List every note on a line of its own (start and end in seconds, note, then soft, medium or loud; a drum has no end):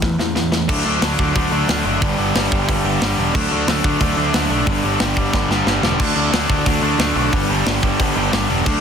0.02 0.18 E2 medium
0.02 0.18 A2 medium
0.02 0.18 E3 medium
0.02 kick loud
0.02 snare medium
0.18 0.35 E2 medium
0.18 0.34 A2 medium
0.18 0.35 E3 medium
0.18 snare medium
0.35 0.67 E2 medium
0.35 0.51 A2 medium
0.35 0.51 E3 medium
0.35 snare medium
0.52 0.67 A2 medium
0.52 0.67 E3 medium
0.52 snare medium
0.69 0.81 D2 loud
0.69 0.86 D3 loud
0.69 2.01 F#3 loud
0.69 0.85 A3 loud
0.69 0.85 D4 loud
0.69 kick loud
0.69 crash loud
0.85 0.97 D2 loud
0.85 1.01 D3 medium
0.85 1.03 A3 medium
0.85 1.04 D4 loud
1.01 1.14 D2 medium
1.01 1.19 D3 medium
1.01 1.18 A3 loud
1.01 1.19 D4 loud
1.01 snare loud
1.01 open hi-hat medium
1.19 1.31 D2 medium
1.19 1.34 D3 medium
1.19 1.35 A3 medium
1.19 1.36 D4 medium
1.19 kick medium
1.35 1.48 D2 loud
1.35 1.52 D3 medium
1.35 1.51 A3 medium
1.35 1.52 D4 loud
1.35 kick loud
1.35 open hi-hat medium
1.51 1.64 D2 medium
1.51 1.68 D3 medium
1.51 1.68 A3 medium
1.51 1.70 D4 medium
1.68 1.81 D2 loud
1.68 1.85 D3 medium
1.68 1.85 A3 loud
1.68 1.85 D4 loud
1.68 snare loud
1.68 open hi-hat medium
1.85 1.97 F#1 medium
1.85 2.01 D3 medium
1.85 2.01 A3 medium
1.85 3.35 D4 loud
2.02 2.14 G1 loud
2.02 2.19 G2 loud
2.02 2.18 D3 loud
2.02 2.18 G3 medium
2.02 3.35 B3 medium
2.02 3.37 D4 loud
2.02 kick loud
2.02 open hi-hat medium
2.18 2.30 G1 medium
2.18 2.34 G2 medium
2.18 2.35 D3 medium
2.18 2.36 G3 medium
2.35 2.47 G1 loud
2.35 2.52 G2 loud
2.35 2.51 D3 loud
2.35 2.50 G3 loud
2.35 snare loud
2.35 open hi-hat medium
2.51 2.64 G1 medium
2.51 2.67 G2 medium
2.51 2.68 D3 medium
2.51 2.68 G3 medium
2.51 kick medium
2.68 2.81 G1 medium
2.68 2.85 G2 medium
2.68 2.84 D3 loud
2.68 2.84 G3 loud
2.68 kick loud
2.68 open hi-hat medium
2.84 2.96 G1 loud
2.84 3.01 G2 medium
2.84 3.01 D3 medium
2.84 3.02 G3 loud
3.01 3.13 G1 medium
3.01 3.19 G2 loud
3.01 3.18 D3 loud
3.01 3.18 G3 loud
3.01 snare loud
3.01 open hi-hat medium
3.18 3.30 E1 medium
3.18 3.35 G2 medium
3.18 3.33 D3 medium
3.18 3.34 G3 loud
3.34 3.47 D2 loud
3.34 3.51 D3 loud
3.34 4.66 F#3 loud
3.34 3.51 A3 loud
3.34 3.51 D4 loud
3.34 kick loud
3.34 crash loud
3.51 3.63 D2 loud
3.51 3.66 D3 medium
3.51 3.67 A3 medium
3.51 3.68 D4 loud
3.67 3.79 D2 loud
3.67 3.84 D3 loud
3.67 3.84 A3 loud
3.67 3.84 D4 loud
3.67 snare loud
3.67 open hi-hat medium
3.84 3.96 D2 medium
3.84 4.00 D3 medium
3.84 4.00 A3 medium
3.84 4.02 D4 medium
3.84 kick loud
4.00 4.13 D2 loud
4.00 4.17 D3 medium
4.00 4.16 A3 medium
4.00 4.17 D4 loud
4.00 kick loud
4.00 open hi-hat medium
4.17 4.29 D2 loud
4.17 4.32 D3 medium
4.17 4.34 A3 medium
4.17 4.35 D4 loud
4.34 4.46 D2 medium
4.34 4.50 D3 loud
4.34 4.50 A3 loud
4.34 4.50 D4 loud
4.34 snare loud
4.34 open hi-hat medium
4.50 4.62 B1 medium
4.50 4.66 D3 medium
4.50 4.66 A3 medium
4.50 6.01 D4 loud
4.67 4.84 G2 medium
4.67 4.83 D3 loud
4.67 4.83 G3 medium
4.67 6.00 B3 loud
4.67 6.02 D4 loud
4.67 kick loud
4.67 open hi-hat medium
4.84 4.96 G1 loud
4.84 4.99 G2 medium
4.84 5.00 D3 medium
4.84 5.00 G3 loud
5.00 5.12 G1 medium
5.00 5.18 G2 medium
5.00 5.17 D3 medium
5.00 5.17 G3 loud
5.00 snare loud
5.00 open hi-hat medium
5.17 5.29 G1 medium
5.17 5.33 G2 medium
5.17 5.33 D3 medium
5.17 5.34 G3 medium
5.17 kick medium
5.33 5.46 G1 loud
5.33 5.51 G2 medium
5.33 5.50 D3 medium
5.33 5.50 G3 loud
5.33 kick loud
5.33 snare medium
5.48 5.61 G1 medium
5.48 5.66 G2 medium
5.48 5.66 D3 medium
5.48 5.67 G3 medium
5.48 snare medium
5.66 5.78 G1 medium
5.66 5.84 G2 loud
5.66 5.84 D3 medium
5.66 5.83 G3 loud
5.66 snare medium
5.83 5.95 E1 medium
5.83 6.00 G2 medium
5.83 5.99 D3 loud
5.83 5.99 G3 loud
5.83 snare loud
6.00 6.12 D2 loud
6.00 6.16 D3 loud
6.00 7.32 F#3 loud
6.00 6.16 A3 medium
6.00 6.16 D4 loud
6.00 kick loud
6.00 crash loud
6.16 6.28 D2 loud
6.16 6.31 D3 medium
6.16 6.32 A3 medium
6.16 6.33 D4 loud
6.32 6.45 D2 medium
6.32 6.50 D3 loud
6.32 6.49 A3 loud
6.32 6.49 D4 loud
6.32 snare loud
6.32 open hi-hat medium
6.50 6.62 D2 medium
6.50 6.65 D3 medium
6.50 6.66 A3 medium
6.50 6.67 D4 loud
6.50 kick loud
6.66 6.78 D2 medium
6.66 6.83 D3 medium
6.66 6.82 A3 loud
6.66 6.83 D4 medium
6.66 kick loud
6.66 open hi-hat medium
6.82 6.95 D2 medium
6.82 6.98 D3 medium
6.82 6.98 A3 medium
6.82 7.00 D4 medium
6.98 7.11 D2 medium
6.98 7.16 D3 loud
6.98 7.16 A3 loud
6.98 7.16 D4 loud
6.98 snare loud
6.98 open hi-hat medium
7.16 7.28 B1 medium
7.16 7.32 D3 medium
7.16 7.32 A3 medium
7.16 8.67 D4 loud
7.32 7.45 G1 loud
7.32 7.49 G2 loud
7.32 7.49 D3 loud
7.32 7.48 G3 loud
7.32 8.66 B3 loud
7.32 8.69 D4 loud
7.32 kick loud
7.32 open hi-hat medium
7.49 7.62 G1 loud
7.49 7.65 G2 medium
7.49 7.66 D3 medium
7.49 7.66 G3 loud
7.66 7.79 G1 medium
7.66 7.83 G2 loud
7.66 7.82 D3 loud
7.66 7.81 G3 loud
7.66 snare loud
7.83 7.95 G1 medium
7.83 7.98 G2 medium
7.83 7.99 D3 medium
7.83 8.00 G3 loud
7.83 kick loud
8.00 8.12 G1 loud
8.00 8.16 G2 medium
8.00 8.15 D3 loud
8.00 8.15 G3 loud
8.00 kick loud
8.00 open hi-hat medium
8.16 8.28 G1 loud
8.16 8.31 G2 medium
8.16 8.32 D3 medium
8.16 8.33 G3 loud
8.33 8.45 G1 medium
8.33 8.49 G2 medium
8.33 8.49 D3 loud
8.33 8.48 G3 loud
8.33 snare loud
8.33 open hi-hat medium
8.49 8.62 E1 medium
8.49 8.66 G2 medium
8.49 8.66 D3 medium
8.49 8.65 G3 loud
8.66 8.78 D2 loud
8.66 8.81 D3 medium
8.66 8.81 F#3 medium
8.66 8.81 A3 loud
8.66 8.81 D4 loud
8.66 kick loud
8.66 crash loud